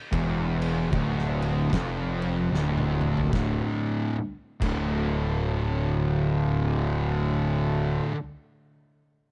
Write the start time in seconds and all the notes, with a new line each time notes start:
0.12 E1 E2, kick, crash
0.62 crash
0.92 D1 D2, kick, crash
1.19 snare
1.42 crash
1.73 F1 F2, kick, snare, crash
2.22 crash
2.52 D1 D2, snare
2.78 high tom
3.01 mid tom
3.17 floor tom
3.32 D1 D2 A2 D3, kick, snare
4.60 D1 D2 A2 D3, kick, crash